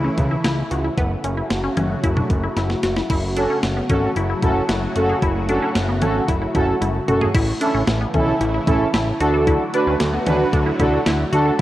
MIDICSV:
0, 0, Header, 1, 6, 480
1, 0, Start_track
1, 0, Tempo, 530973
1, 880, Time_signature, 4, 2, 24, 8
1, 10498, End_track
2, 0, Start_track
2, 0, Title_t, "Analog polysynth"
2, 0, Program_c, 0, 90
2, 3041, Note_on_c, 0, 61, 86
2, 3042, Note_on_c, 0, 66, 78
2, 3042, Note_on_c, 0, 69, 94
2, 3229, Note_off_c, 0, 61, 0
2, 3229, Note_off_c, 0, 66, 0
2, 3229, Note_off_c, 0, 69, 0
2, 3522, Note_on_c, 0, 66, 77
2, 3522, Note_on_c, 0, 69, 93
2, 3523, Note_on_c, 0, 61, 83
2, 3709, Note_off_c, 0, 61, 0
2, 3709, Note_off_c, 0, 66, 0
2, 3709, Note_off_c, 0, 69, 0
2, 4003, Note_on_c, 0, 61, 87
2, 4003, Note_on_c, 0, 66, 80
2, 4003, Note_on_c, 0, 69, 98
2, 4189, Note_off_c, 0, 61, 0
2, 4189, Note_off_c, 0, 66, 0
2, 4189, Note_off_c, 0, 69, 0
2, 4482, Note_on_c, 0, 61, 85
2, 4483, Note_on_c, 0, 66, 77
2, 4483, Note_on_c, 0, 69, 92
2, 4669, Note_off_c, 0, 61, 0
2, 4669, Note_off_c, 0, 66, 0
2, 4669, Note_off_c, 0, 69, 0
2, 4962, Note_on_c, 0, 69, 94
2, 4963, Note_on_c, 0, 61, 85
2, 4963, Note_on_c, 0, 66, 77
2, 5149, Note_off_c, 0, 66, 0
2, 5149, Note_off_c, 0, 69, 0
2, 5150, Note_off_c, 0, 61, 0
2, 5443, Note_on_c, 0, 61, 86
2, 5443, Note_on_c, 0, 66, 76
2, 5443, Note_on_c, 0, 69, 96
2, 5629, Note_off_c, 0, 61, 0
2, 5629, Note_off_c, 0, 66, 0
2, 5629, Note_off_c, 0, 69, 0
2, 5920, Note_on_c, 0, 61, 90
2, 5920, Note_on_c, 0, 66, 82
2, 5920, Note_on_c, 0, 69, 98
2, 6108, Note_off_c, 0, 61, 0
2, 6108, Note_off_c, 0, 66, 0
2, 6108, Note_off_c, 0, 69, 0
2, 6400, Note_on_c, 0, 61, 85
2, 6401, Note_on_c, 0, 66, 82
2, 6401, Note_on_c, 0, 69, 92
2, 6588, Note_off_c, 0, 61, 0
2, 6588, Note_off_c, 0, 66, 0
2, 6588, Note_off_c, 0, 69, 0
2, 6880, Note_on_c, 0, 61, 89
2, 6880, Note_on_c, 0, 64, 81
2, 6880, Note_on_c, 0, 69, 95
2, 7068, Note_off_c, 0, 61, 0
2, 7068, Note_off_c, 0, 64, 0
2, 7068, Note_off_c, 0, 69, 0
2, 7362, Note_on_c, 0, 61, 86
2, 7362, Note_on_c, 0, 64, 81
2, 7362, Note_on_c, 0, 69, 96
2, 7549, Note_off_c, 0, 61, 0
2, 7549, Note_off_c, 0, 64, 0
2, 7549, Note_off_c, 0, 69, 0
2, 7840, Note_on_c, 0, 64, 81
2, 7840, Note_on_c, 0, 69, 102
2, 7841, Note_on_c, 0, 61, 90
2, 8028, Note_off_c, 0, 61, 0
2, 8028, Note_off_c, 0, 64, 0
2, 8028, Note_off_c, 0, 69, 0
2, 8320, Note_on_c, 0, 62, 93
2, 8320, Note_on_c, 0, 69, 102
2, 8321, Note_on_c, 0, 66, 83
2, 8704, Note_off_c, 0, 69, 0
2, 8705, Note_off_c, 0, 62, 0
2, 8705, Note_off_c, 0, 66, 0
2, 8800, Note_on_c, 0, 62, 88
2, 8800, Note_on_c, 0, 66, 81
2, 8801, Note_on_c, 0, 71, 97
2, 8988, Note_off_c, 0, 62, 0
2, 8988, Note_off_c, 0, 66, 0
2, 8989, Note_off_c, 0, 71, 0
2, 9280, Note_on_c, 0, 62, 85
2, 9280, Note_on_c, 0, 66, 79
2, 9280, Note_on_c, 0, 71, 96
2, 9468, Note_off_c, 0, 62, 0
2, 9468, Note_off_c, 0, 66, 0
2, 9468, Note_off_c, 0, 71, 0
2, 9760, Note_on_c, 0, 62, 93
2, 9760, Note_on_c, 0, 66, 84
2, 9760, Note_on_c, 0, 69, 100
2, 9948, Note_off_c, 0, 62, 0
2, 9948, Note_off_c, 0, 66, 0
2, 9948, Note_off_c, 0, 69, 0
2, 10240, Note_on_c, 0, 62, 90
2, 10240, Note_on_c, 0, 66, 82
2, 10240, Note_on_c, 0, 69, 97
2, 10428, Note_off_c, 0, 62, 0
2, 10428, Note_off_c, 0, 66, 0
2, 10428, Note_off_c, 0, 69, 0
2, 10498, End_track
3, 0, Start_track
3, 0, Title_t, "Synth arpeggio sound"
3, 0, Program_c, 1, 84
3, 40, Note_on_c, 1, 61, 74
3, 192, Note_off_c, 1, 61, 0
3, 281, Note_on_c, 1, 64, 70
3, 356, Note_off_c, 1, 64, 0
3, 400, Note_on_c, 1, 64, 86
3, 552, Note_off_c, 1, 64, 0
3, 642, Note_on_c, 1, 66, 84
3, 717, Note_off_c, 1, 66, 0
3, 762, Note_on_c, 1, 64, 76
3, 838, Note_off_c, 1, 64, 0
3, 882, Note_on_c, 1, 59, 99
3, 1033, Note_off_c, 1, 59, 0
3, 1122, Note_on_c, 1, 61, 83
3, 1198, Note_off_c, 1, 61, 0
3, 1241, Note_on_c, 1, 64, 76
3, 1392, Note_off_c, 1, 64, 0
3, 1481, Note_on_c, 1, 61, 75
3, 1557, Note_off_c, 1, 61, 0
3, 1600, Note_on_c, 1, 61, 80
3, 1752, Note_off_c, 1, 61, 0
3, 1842, Note_on_c, 1, 64, 92
3, 1917, Note_off_c, 1, 64, 0
3, 1962, Note_on_c, 1, 62, 75
3, 2113, Note_off_c, 1, 62, 0
3, 2201, Note_on_c, 1, 64, 73
3, 2277, Note_off_c, 1, 64, 0
3, 2322, Note_on_c, 1, 64, 85
3, 2473, Note_off_c, 1, 64, 0
3, 2562, Note_on_c, 1, 66, 79
3, 2637, Note_off_c, 1, 66, 0
3, 2683, Note_on_c, 1, 64, 78
3, 2758, Note_off_c, 1, 64, 0
3, 2803, Note_on_c, 1, 64, 95
3, 2954, Note_off_c, 1, 64, 0
3, 3043, Note_on_c, 1, 62, 83
3, 3118, Note_off_c, 1, 62, 0
3, 3164, Note_on_c, 1, 61, 77
3, 3314, Note_off_c, 1, 61, 0
3, 3404, Note_on_c, 1, 59, 73
3, 3479, Note_off_c, 1, 59, 0
3, 3523, Note_on_c, 1, 61, 80
3, 3674, Note_off_c, 1, 61, 0
3, 3765, Note_on_c, 1, 64, 93
3, 3839, Note_off_c, 1, 64, 0
3, 3884, Note_on_c, 1, 64, 75
3, 3959, Note_off_c, 1, 64, 0
3, 4005, Note_on_c, 1, 64, 80
3, 4155, Note_off_c, 1, 64, 0
3, 4244, Note_on_c, 1, 64, 85
3, 4394, Note_off_c, 1, 64, 0
3, 4484, Note_on_c, 1, 66, 82
3, 4559, Note_off_c, 1, 66, 0
3, 4605, Note_on_c, 1, 68, 75
3, 4679, Note_off_c, 1, 68, 0
3, 4724, Note_on_c, 1, 64, 98
3, 4875, Note_off_c, 1, 64, 0
3, 4964, Note_on_c, 1, 62, 83
3, 5039, Note_off_c, 1, 62, 0
3, 5084, Note_on_c, 1, 61, 80
3, 5235, Note_off_c, 1, 61, 0
3, 5323, Note_on_c, 1, 59, 72
3, 5398, Note_off_c, 1, 59, 0
3, 5442, Note_on_c, 1, 61, 85
3, 5593, Note_off_c, 1, 61, 0
3, 5683, Note_on_c, 1, 64, 93
3, 5758, Note_off_c, 1, 64, 0
3, 5802, Note_on_c, 1, 64, 74
3, 5877, Note_off_c, 1, 64, 0
3, 5923, Note_on_c, 1, 64, 83
3, 6074, Note_off_c, 1, 64, 0
3, 6161, Note_on_c, 1, 64, 83
3, 6313, Note_off_c, 1, 64, 0
3, 6401, Note_on_c, 1, 66, 81
3, 6477, Note_off_c, 1, 66, 0
3, 6522, Note_on_c, 1, 68, 76
3, 6597, Note_off_c, 1, 68, 0
3, 6642, Note_on_c, 1, 64, 98
3, 6793, Note_off_c, 1, 64, 0
3, 6881, Note_on_c, 1, 62, 86
3, 6957, Note_off_c, 1, 62, 0
3, 7003, Note_on_c, 1, 61, 78
3, 7154, Note_off_c, 1, 61, 0
3, 7242, Note_on_c, 1, 59, 74
3, 7317, Note_off_c, 1, 59, 0
3, 7362, Note_on_c, 1, 61, 84
3, 7513, Note_off_c, 1, 61, 0
3, 7602, Note_on_c, 1, 64, 91
3, 7677, Note_off_c, 1, 64, 0
3, 7722, Note_on_c, 1, 64, 76
3, 7797, Note_off_c, 1, 64, 0
3, 7840, Note_on_c, 1, 64, 81
3, 7992, Note_off_c, 1, 64, 0
3, 8081, Note_on_c, 1, 64, 87
3, 8232, Note_off_c, 1, 64, 0
3, 8321, Note_on_c, 1, 66, 82
3, 8396, Note_off_c, 1, 66, 0
3, 8441, Note_on_c, 1, 69, 77
3, 8516, Note_off_c, 1, 69, 0
3, 8560, Note_on_c, 1, 64, 98
3, 8712, Note_off_c, 1, 64, 0
3, 8801, Note_on_c, 1, 62, 84
3, 8877, Note_off_c, 1, 62, 0
3, 8921, Note_on_c, 1, 61, 80
3, 9072, Note_off_c, 1, 61, 0
3, 9161, Note_on_c, 1, 59, 73
3, 9237, Note_off_c, 1, 59, 0
3, 9280, Note_on_c, 1, 61, 86
3, 9432, Note_off_c, 1, 61, 0
3, 9520, Note_on_c, 1, 62, 93
3, 9596, Note_off_c, 1, 62, 0
3, 9639, Note_on_c, 1, 64, 76
3, 9715, Note_off_c, 1, 64, 0
3, 9760, Note_on_c, 1, 64, 83
3, 9912, Note_off_c, 1, 64, 0
3, 9999, Note_on_c, 1, 64, 89
3, 10151, Note_off_c, 1, 64, 0
3, 10238, Note_on_c, 1, 66, 82
3, 10314, Note_off_c, 1, 66, 0
3, 10356, Note_on_c, 1, 69, 77
3, 10433, Note_off_c, 1, 69, 0
3, 10498, End_track
4, 0, Start_track
4, 0, Title_t, "Analog synth pad"
4, 0, Program_c, 2, 89
4, 0, Note_on_c, 2, 49, 80
4, 0, Note_on_c, 2, 52, 71
4, 0, Note_on_c, 2, 57, 74
4, 0, Note_on_c, 2, 64, 91
4, 844, Note_off_c, 2, 57, 0
4, 862, Note_off_c, 2, 49, 0
4, 862, Note_off_c, 2, 52, 0
4, 862, Note_off_c, 2, 64, 0
4, 883, Note_on_c, 2, 57, 71
4, 883, Note_on_c, 2, 66, 92
4, 884, Note_on_c, 2, 49, 81
4, 884, Note_on_c, 2, 54, 75
4, 2783, Note_off_c, 2, 49, 0
4, 2783, Note_off_c, 2, 54, 0
4, 2783, Note_off_c, 2, 57, 0
4, 2783, Note_off_c, 2, 66, 0
4, 2802, Note_on_c, 2, 66, 90
4, 2803, Note_on_c, 2, 49, 84
4, 2803, Note_on_c, 2, 54, 74
4, 2803, Note_on_c, 2, 57, 74
4, 6605, Note_off_c, 2, 66, 0
4, 6606, Note_off_c, 2, 49, 0
4, 6606, Note_off_c, 2, 54, 0
4, 6606, Note_off_c, 2, 57, 0
4, 6641, Note_on_c, 2, 52, 75
4, 6641, Note_on_c, 2, 64, 90
4, 6642, Note_on_c, 2, 49, 83
4, 6642, Note_on_c, 2, 57, 76
4, 8304, Note_off_c, 2, 52, 0
4, 8304, Note_off_c, 2, 64, 0
4, 8305, Note_off_c, 2, 49, 0
4, 8305, Note_off_c, 2, 57, 0
4, 8320, Note_on_c, 2, 54, 79
4, 8321, Note_on_c, 2, 50, 88
4, 8321, Note_on_c, 2, 57, 77
4, 8321, Note_on_c, 2, 66, 94
4, 10459, Note_off_c, 2, 50, 0
4, 10459, Note_off_c, 2, 54, 0
4, 10459, Note_off_c, 2, 57, 0
4, 10459, Note_off_c, 2, 66, 0
4, 10498, End_track
5, 0, Start_track
5, 0, Title_t, "Analog synth bass"
5, 0, Program_c, 3, 38
5, 160, Note_on_c, 3, 37, 105
5, 328, Note_off_c, 3, 37, 0
5, 401, Note_on_c, 3, 37, 106
5, 569, Note_off_c, 3, 37, 0
5, 641, Note_on_c, 3, 37, 98
5, 809, Note_off_c, 3, 37, 0
5, 881, Note_on_c, 3, 30, 107
5, 1049, Note_off_c, 3, 30, 0
5, 1120, Note_on_c, 3, 30, 100
5, 1288, Note_off_c, 3, 30, 0
5, 1360, Note_on_c, 3, 30, 97
5, 1528, Note_off_c, 3, 30, 0
5, 1600, Note_on_c, 3, 30, 108
5, 1768, Note_off_c, 3, 30, 0
5, 1842, Note_on_c, 3, 30, 105
5, 2010, Note_off_c, 3, 30, 0
5, 2080, Note_on_c, 3, 30, 106
5, 2248, Note_off_c, 3, 30, 0
5, 2321, Note_on_c, 3, 30, 109
5, 2489, Note_off_c, 3, 30, 0
5, 2560, Note_on_c, 3, 30, 101
5, 2729, Note_off_c, 3, 30, 0
5, 2801, Note_on_c, 3, 30, 101
5, 3137, Note_off_c, 3, 30, 0
5, 3281, Note_on_c, 3, 30, 97
5, 3449, Note_off_c, 3, 30, 0
5, 3522, Note_on_c, 3, 32, 96
5, 3690, Note_off_c, 3, 32, 0
5, 3761, Note_on_c, 3, 30, 101
5, 3929, Note_off_c, 3, 30, 0
5, 4000, Note_on_c, 3, 30, 99
5, 4169, Note_off_c, 3, 30, 0
5, 4241, Note_on_c, 3, 30, 104
5, 4409, Note_off_c, 3, 30, 0
5, 4482, Note_on_c, 3, 30, 94
5, 4650, Note_off_c, 3, 30, 0
5, 4722, Note_on_c, 3, 30, 100
5, 5058, Note_off_c, 3, 30, 0
5, 5201, Note_on_c, 3, 30, 106
5, 5441, Note_on_c, 3, 32, 101
5, 5455, Note_off_c, 3, 30, 0
5, 5609, Note_off_c, 3, 32, 0
5, 5682, Note_on_c, 3, 30, 96
5, 5850, Note_off_c, 3, 30, 0
5, 5921, Note_on_c, 3, 30, 101
5, 6089, Note_off_c, 3, 30, 0
5, 6160, Note_on_c, 3, 30, 104
5, 6328, Note_off_c, 3, 30, 0
5, 6401, Note_on_c, 3, 30, 95
5, 6569, Note_off_c, 3, 30, 0
5, 6641, Note_on_c, 3, 33, 99
5, 6809, Note_off_c, 3, 33, 0
5, 7000, Note_on_c, 3, 33, 87
5, 7085, Note_off_c, 3, 33, 0
5, 7120, Note_on_c, 3, 33, 108
5, 7288, Note_off_c, 3, 33, 0
5, 7361, Note_on_c, 3, 35, 96
5, 7529, Note_off_c, 3, 35, 0
5, 7600, Note_on_c, 3, 33, 107
5, 7768, Note_off_c, 3, 33, 0
5, 7840, Note_on_c, 3, 33, 95
5, 8008, Note_off_c, 3, 33, 0
5, 8080, Note_on_c, 3, 33, 104
5, 8248, Note_off_c, 3, 33, 0
5, 8320, Note_on_c, 3, 38, 101
5, 8656, Note_off_c, 3, 38, 0
5, 8920, Note_on_c, 3, 38, 93
5, 9004, Note_off_c, 3, 38, 0
5, 9041, Note_on_c, 3, 38, 109
5, 9209, Note_off_c, 3, 38, 0
5, 9281, Note_on_c, 3, 38, 96
5, 9449, Note_off_c, 3, 38, 0
5, 9521, Note_on_c, 3, 38, 109
5, 9689, Note_off_c, 3, 38, 0
5, 9760, Note_on_c, 3, 38, 102
5, 9928, Note_off_c, 3, 38, 0
5, 10001, Note_on_c, 3, 38, 106
5, 10169, Note_off_c, 3, 38, 0
5, 10239, Note_on_c, 3, 38, 99
5, 10407, Note_off_c, 3, 38, 0
5, 10498, End_track
6, 0, Start_track
6, 0, Title_t, "Drums"
6, 160, Note_on_c, 9, 36, 96
6, 160, Note_on_c, 9, 42, 72
6, 161, Note_on_c, 9, 45, 86
6, 250, Note_off_c, 9, 36, 0
6, 251, Note_off_c, 9, 42, 0
6, 251, Note_off_c, 9, 45, 0
6, 401, Note_on_c, 9, 38, 114
6, 403, Note_on_c, 9, 42, 80
6, 491, Note_off_c, 9, 38, 0
6, 494, Note_off_c, 9, 42, 0
6, 642, Note_on_c, 9, 42, 81
6, 732, Note_off_c, 9, 42, 0
6, 881, Note_on_c, 9, 36, 105
6, 882, Note_on_c, 9, 42, 70
6, 972, Note_off_c, 9, 36, 0
6, 973, Note_off_c, 9, 42, 0
6, 1121, Note_on_c, 9, 42, 75
6, 1212, Note_off_c, 9, 42, 0
6, 1360, Note_on_c, 9, 38, 99
6, 1362, Note_on_c, 9, 42, 79
6, 1451, Note_off_c, 9, 38, 0
6, 1452, Note_off_c, 9, 42, 0
6, 1600, Note_on_c, 9, 42, 74
6, 1603, Note_on_c, 9, 47, 91
6, 1691, Note_off_c, 9, 42, 0
6, 1694, Note_off_c, 9, 47, 0
6, 1842, Note_on_c, 9, 36, 91
6, 1842, Note_on_c, 9, 42, 72
6, 1932, Note_off_c, 9, 36, 0
6, 1932, Note_off_c, 9, 42, 0
6, 1961, Note_on_c, 9, 45, 99
6, 2051, Note_off_c, 9, 45, 0
6, 2080, Note_on_c, 9, 36, 100
6, 2080, Note_on_c, 9, 42, 73
6, 2170, Note_off_c, 9, 36, 0
6, 2171, Note_off_c, 9, 42, 0
6, 2320, Note_on_c, 9, 38, 59
6, 2322, Note_on_c, 9, 42, 78
6, 2411, Note_off_c, 9, 38, 0
6, 2412, Note_off_c, 9, 42, 0
6, 2441, Note_on_c, 9, 38, 61
6, 2531, Note_off_c, 9, 38, 0
6, 2560, Note_on_c, 9, 38, 88
6, 2560, Note_on_c, 9, 42, 82
6, 2650, Note_off_c, 9, 42, 0
6, 2651, Note_off_c, 9, 38, 0
6, 2681, Note_on_c, 9, 38, 84
6, 2771, Note_off_c, 9, 38, 0
6, 2801, Note_on_c, 9, 36, 103
6, 2801, Note_on_c, 9, 42, 73
6, 2801, Note_on_c, 9, 49, 92
6, 2891, Note_off_c, 9, 42, 0
6, 2891, Note_off_c, 9, 49, 0
6, 2892, Note_off_c, 9, 36, 0
6, 3041, Note_on_c, 9, 42, 73
6, 3131, Note_off_c, 9, 42, 0
6, 3281, Note_on_c, 9, 38, 104
6, 3282, Note_on_c, 9, 42, 79
6, 3371, Note_off_c, 9, 38, 0
6, 3373, Note_off_c, 9, 42, 0
6, 3521, Note_on_c, 9, 42, 75
6, 3522, Note_on_c, 9, 36, 94
6, 3524, Note_on_c, 9, 47, 91
6, 3611, Note_off_c, 9, 42, 0
6, 3612, Note_off_c, 9, 36, 0
6, 3614, Note_off_c, 9, 47, 0
6, 3762, Note_on_c, 9, 42, 73
6, 3853, Note_off_c, 9, 42, 0
6, 4001, Note_on_c, 9, 36, 98
6, 4001, Note_on_c, 9, 42, 74
6, 4002, Note_on_c, 9, 45, 90
6, 4091, Note_off_c, 9, 36, 0
6, 4091, Note_off_c, 9, 42, 0
6, 4092, Note_off_c, 9, 45, 0
6, 4240, Note_on_c, 9, 38, 116
6, 4243, Note_on_c, 9, 42, 80
6, 4331, Note_off_c, 9, 38, 0
6, 4333, Note_off_c, 9, 42, 0
6, 4482, Note_on_c, 9, 42, 80
6, 4572, Note_off_c, 9, 42, 0
6, 4722, Note_on_c, 9, 36, 106
6, 4722, Note_on_c, 9, 42, 72
6, 4813, Note_off_c, 9, 36, 0
6, 4813, Note_off_c, 9, 42, 0
6, 4961, Note_on_c, 9, 42, 75
6, 5052, Note_off_c, 9, 42, 0
6, 5202, Note_on_c, 9, 38, 103
6, 5203, Note_on_c, 9, 42, 80
6, 5292, Note_off_c, 9, 38, 0
6, 5294, Note_off_c, 9, 42, 0
6, 5440, Note_on_c, 9, 42, 73
6, 5443, Note_on_c, 9, 47, 91
6, 5530, Note_off_c, 9, 42, 0
6, 5533, Note_off_c, 9, 47, 0
6, 5682, Note_on_c, 9, 36, 93
6, 5683, Note_on_c, 9, 42, 74
6, 5773, Note_off_c, 9, 36, 0
6, 5773, Note_off_c, 9, 42, 0
6, 5921, Note_on_c, 9, 36, 98
6, 5923, Note_on_c, 9, 42, 74
6, 5923, Note_on_c, 9, 45, 88
6, 6011, Note_off_c, 9, 36, 0
6, 6013, Note_off_c, 9, 42, 0
6, 6014, Note_off_c, 9, 45, 0
6, 6163, Note_on_c, 9, 48, 63
6, 6165, Note_on_c, 9, 42, 81
6, 6254, Note_off_c, 9, 48, 0
6, 6255, Note_off_c, 9, 42, 0
6, 6403, Note_on_c, 9, 42, 80
6, 6403, Note_on_c, 9, 45, 89
6, 6493, Note_off_c, 9, 42, 0
6, 6494, Note_off_c, 9, 45, 0
6, 6522, Note_on_c, 9, 43, 88
6, 6612, Note_off_c, 9, 43, 0
6, 6642, Note_on_c, 9, 36, 108
6, 6642, Note_on_c, 9, 42, 74
6, 6642, Note_on_c, 9, 49, 102
6, 6732, Note_off_c, 9, 36, 0
6, 6732, Note_off_c, 9, 49, 0
6, 6733, Note_off_c, 9, 42, 0
6, 6881, Note_on_c, 9, 42, 77
6, 6972, Note_off_c, 9, 42, 0
6, 7120, Note_on_c, 9, 38, 109
6, 7122, Note_on_c, 9, 42, 79
6, 7211, Note_off_c, 9, 38, 0
6, 7212, Note_off_c, 9, 42, 0
6, 7360, Note_on_c, 9, 42, 77
6, 7361, Note_on_c, 9, 36, 92
6, 7363, Note_on_c, 9, 47, 95
6, 7450, Note_off_c, 9, 42, 0
6, 7451, Note_off_c, 9, 36, 0
6, 7453, Note_off_c, 9, 47, 0
6, 7602, Note_on_c, 9, 42, 76
6, 7692, Note_off_c, 9, 42, 0
6, 7840, Note_on_c, 9, 36, 103
6, 7842, Note_on_c, 9, 42, 73
6, 7843, Note_on_c, 9, 45, 88
6, 7930, Note_off_c, 9, 36, 0
6, 7932, Note_off_c, 9, 42, 0
6, 7933, Note_off_c, 9, 45, 0
6, 8080, Note_on_c, 9, 38, 120
6, 8082, Note_on_c, 9, 42, 82
6, 8170, Note_off_c, 9, 38, 0
6, 8173, Note_off_c, 9, 42, 0
6, 8321, Note_on_c, 9, 42, 83
6, 8411, Note_off_c, 9, 42, 0
6, 8561, Note_on_c, 9, 36, 106
6, 8561, Note_on_c, 9, 42, 74
6, 8651, Note_off_c, 9, 36, 0
6, 8652, Note_off_c, 9, 42, 0
6, 8800, Note_on_c, 9, 42, 78
6, 8891, Note_off_c, 9, 42, 0
6, 9039, Note_on_c, 9, 38, 106
6, 9041, Note_on_c, 9, 42, 80
6, 9130, Note_off_c, 9, 38, 0
6, 9131, Note_off_c, 9, 42, 0
6, 9279, Note_on_c, 9, 42, 75
6, 9283, Note_on_c, 9, 47, 95
6, 9370, Note_off_c, 9, 42, 0
6, 9373, Note_off_c, 9, 47, 0
6, 9521, Note_on_c, 9, 36, 96
6, 9521, Note_on_c, 9, 42, 75
6, 9611, Note_off_c, 9, 36, 0
6, 9611, Note_off_c, 9, 42, 0
6, 9760, Note_on_c, 9, 36, 100
6, 9761, Note_on_c, 9, 42, 77
6, 9762, Note_on_c, 9, 45, 94
6, 9850, Note_off_c, 9, 36, 0
6, 9851, Note_off_c, 9, 42, 0
6, 9852, Note_off_c, 9, 45, 0
6, 10000, Note_on_c, 9, 38, 119
6, 10002, Note_on_c, 9, 42, 81
6, 10090, Note_off_c, 9, 38, 0
6, 10093, Note_off_c, 9, 42, 0
6, 10240, Note_on_c, 9, 42, 84
6, 10331, Note_off_c, 9, 42, 0
6, 10498, End_track
0, 0, End_of_file